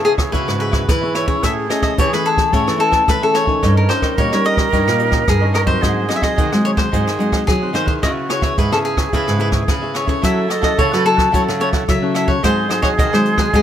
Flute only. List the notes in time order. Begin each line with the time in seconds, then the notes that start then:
Already playing: G#4
0.34 F#4
0.82 F#4
0.89 E4
1.43 G#4
1.98 G#4
2.53 A4
3.62 A#4
5.82 G#4
6.93 G#4
8.02 F#4
8.57 G#4
10.23 A4
11.32 A4
12.42 G#4